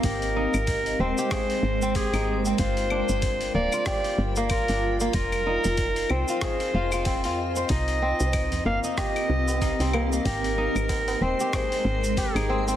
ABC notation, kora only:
X:1
M:4/4
L:1/16
Q:"Swing 16ths" 1/4=94
K:Ablyd
V:1 name="Kora"
G z E z3 C G A z2 C G E z C | F z D z3 B, F G z2 B, F D z B, | F z E z3 C F A z F F C F z c | E z C z3 B, E G z3 E C B, B, |
G z E z3 C G A z3 G E C C |]